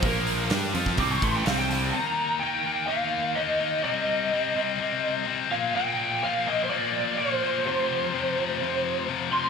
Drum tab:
HH |o-o-o-o-o-o-o-o-|----------------|----------------|----------------|
SD |----o--o----oo--|----------------|----------------|----------------|
BD |o------oo-o-----|----------------|----------------|----------------|

HH |----------------|
SD |----------------|
BD |----------------|